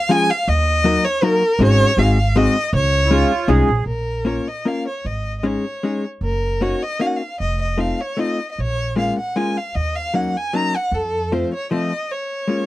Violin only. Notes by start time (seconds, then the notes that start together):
Already playing: F5
0.11 G#5
0.30 F5
0.49 D#5
1.05 C#5
1.23 A#4
1.62 C#5
1.99 F5
2.37 D#5
2.75 C#5
3.86 A#4
4.26 C#5
4.48 D#5
4.68 F5
4.88 C#5
5.06 D#5
5.38 D#5
5.46 C#5
6.24 A#4
6.62 C#5
6.83 D#5
7.01 F5
7.06 F#5
7.16 F5
7.40 D#5
7.62 D#5
7.80 F5
8.01 C#5
8.20 D#5
8.51 D#5
8.60 C#5
8.98 F5
9.18 F#5
9.36 G#5
9.57 F5
9.75 D#5
9.96 F5
10.15 F#5
10.37 G#5
10.56 A#5
10.76 F#5
10.94 A4
11.32 C5
11.54 C#5
11.72 D#5
12.11 C#5